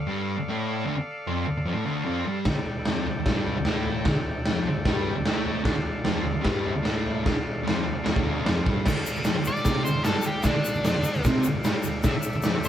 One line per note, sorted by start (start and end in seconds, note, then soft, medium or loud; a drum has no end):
0.00 2.39 A4 medium
0.00 2.40 D5 medium
0.00 2.41 F5 medium
0.07 0.35 G2 medium
0.07 0.36 G3 loud
0.38 0.46 D2 medium
0.48 0.85 A2 medium
0.48 0.87 A3 loud
0.85 0.95 D2 medium
0.85 0.96 D3 medium
0.97 muted distorted electric guitar stroke medium
1.27 1.46 F2 loud
1.27 1.46 F3 loud
1.46 1.56 D2 medium
1.57 1.65 D2 medium
1.65 1.74 F2 medium
1.65 1.75 F3 medium
1.74 1.84 A2 medium
1.74 1.85 A3 medium
1.85 2.04 D2 medium
1.85 2.05 D3 medium
2.04 2.24 F2 medium
2.04 2.25 F3 loud
2.26 2.45 G2 medium
2.26 2.46 G3 loud
2.45 2.55 D2 medium
2.45 2.55 D3 medium
2.45 5.63 A4 medium
2.45 5.63 D5 medium
2.45 kick loud
2.45 snare loud
2.45 floor tom medium
2.50 5.64 G5 medium
2.58 muted distorted electric guitar stroke medium
2.65 floor tom medium
2.85 3.06 F2 loud
2.85 3.06 F3 loud
2.85 snare loud
2.85 floor tom medium
3.06 3.16 D2 medium
3.06 floor tom medium
3.18 3.27 D2 medium
3.26 3.57 G2 medium
3.26 3.57 G3 medium
3.26 kick loud
3.26 snare loud
3.26 floor tom medium
3.46 floor tom medium
3.58 3.67 D2 medium
3.65 4.06 A2 loud
3.65 4.07 A3 loud
3.65 snare medium
3.65 floor tom medium
3.85 floor tom medium
4.05 4.15 D2 loud
4.05 4.16 D3 medium
4.05 kick loud
4.05 snare loud
4.05 floor tom medium
4.19 muted distorted electric guitar stroke medium
4.26 floor tom medium
4.46 4.67 F2 loud
4.46 snare loud
4.46 floor tom medium
4.50 4.67 F3 loud
4.65 4.77 D2 medium
4.65 floor tom medium
4.78 4.86 D2 medium
4.85 5.15 G2 medium
4.85 5.16 G3 loud
4.85 kick loud
4.85 snare loud
4.85 floor tom medium
5.06 floor tom medium
5.15 5.26 D2 medium
5.26 5.63 A2 loud
5.26 5.64 A3 loud
5.26 snare loud
5.26 floor tom medium
5.46 floor tom medium
5.63 5.74 D2 medium
5.63 5.74 D3 loud
5.63 8.81 A4 medium
5.63 8.82 D5 medium
5.63 kick loud
5.63 snare loud
5.63 floor tom medium
5.68 8.83 F5 medium
5.75 muted distorted electric guitar stroke medium
5.86 floor tom medium
6.04 6.23 F2 medium
6.04 6.25 F3 loud
6.04 snare loud
6.04 floor tom medium
6.24 6.33 D2 medium
6.24 floor tom medium
6.34 6.41 D2 medium
6.41 6.73 G2 medium
6.41 6.74 G3 medium
6.41 snare loud
6.41 floor tom medium
6.45 kick medium
6.66 floor tom medium
6.74 6.82 D2 medium
6.82 7.24 A2 loud
6.82 7.25 A3 loud
6.82 snare loud
6.82 floor tom medium
7.06 floor tom medium
7.24 7.33 D2 medium
7.24 7.35 D3 loud
7.24 kick loud
7.24 snare loud
7.24 floor tom medium
7.34 muted distorted electric guitar stroke soft
7.47 floor tom medium
7.63 7.84 F2 loud
7.63 7.84 F3 loud
7.68 snare loud
7.68 floor tom medium
7.84 7.94 D2 medium
7.84 floor tom medium
7.95 8.03 D2 medium
8.04 8.13 F2 medium
8.04 8.14 F3 medium
8.04 snare loud
8.04 floor tom medium
8.13 8.22 A2 medium
8.13 8.23 A3 medium
8.13 kick loud
8.23 8.44 D2 loud
8.23 8.44 D3 medium
8.23 floor tom medium
8.46 8.65 F2 loud
8.46 8.66 F3 loud
8.46 snare loud
8.46 floor tom medium
8.66 8.85 G2 medium
8.66 8.86 G3 loud
8.66 kick loud
8.66 floor tom medium
8.85 8.96 D2 medium
8.85 8.97 D3 medium
8.85 11.99 A4 medium
8.85 12.02 D5 medium
8.85 12.03 F5 medium
8.85 kick loud
8.85 snare loud
8.85 crash loud
8.85 shaker medium
8.99 muted distorted electric guitar stroke medium
9.06 shaker medium
9.16 muted distorted electric guitar stroke medium
9.16 shaker soft
9.24 9.35 F2 medium
9.24 9.36 F3 loud
9.24 snare loud
9.24 open hi-hat medium
9.24 shaker medium
9.37 9.46 D2 medium
9.45 9.84 D5 medium
9.45 muted distorted electric guitar stroke medium
9.45 shaker medium
9.56 9.66 D2 medium
9.56 shaker soft
9.65 9.85 C3 medium
9.65 9.86 C4 medium
9.65 kick loud
9.65 snare loud
9.65 open hi-hat medium
9.65 shaker medium
9.85 9.95 D2 medium
9.85 10.04 C5 medium
9.85 shaker loud
9.96 muted distorted electric guitar stroke medium
10.03 10.15 G2 medium
10.03 10.16 G3 loud
10.03 10.24 A4 medium
10.03 snare loud
10.03 open hi-hat medium
10.03 shaker medium
10.16 muted distorted electric guitar stroke medium
10.22 10.42 D2 medium
10.22 shaker medium
10.27 10.45 G4 medium
10.43 10.54 D2 medium
10.43 10.55 D3 loud
10.43 11.22 D4 loud
10.43 kick loud
10.43 snare loud
10.43 open hi-hat medium
10.43 shaker medium
10.55 muted distorted electric guitar stroke medium
10.65 shaker medium
10.75 muted distorted electric guitar stroke medium
10.84 10.94 F2 medium
10.84 10.94 F3 loud
10.84 snare loud
10.84 open hi-hat medium
10.84 shaker medium
10.94 11.02 D2 medium
11.03 muted distorted electric guitar stroke medium
11.03 shaker medium
11.15 11.24 D2 medium
11.15 shaker soft
11.24 11.44 C3 medium
11.24 11.45 C4 medium
11.24 kick loud
11.24 snare loud
11.24 open hi-hat medium
11.24 shaker medium
11.44 11.55 D2 medium
11.44 shaker loud
11.56 muted distorted electric guitar stroke medium
11.64 11.74 G2 medium
11.64 11.74 G3 loud
11.64 snare loud
11.64 open hi-hat medium
11.64 shaker medium
11.74 muted distorted electric guitar stroke medium
11.83 12.01 D2 medium
11.83 shaker medium
12.00 12.14 D2 loud
12.00 12.69 A4 medium
12.00 12.69 D5 medium
12.00 12.69 E5 medium
12.00 snare loud
12.00 open hi-hat medium
12.00 shaker medium
12.04 12.15 D3 loud
12.04 kick loud
12.16 muted distorted electric guitar stroke medium
12.23 shaker medium
12.33 muted distorted electric guitar stroke medium
12.33 shaker soft
12.42 12.55 F2 loud
12.42 snare loud
12.42 open hi-hat medium
12.42 shaker medium
12.47 12.55 F3 loud
12.56 12.65 D2 medium
12.64 12.69 D5 loud
12.64 shaker medium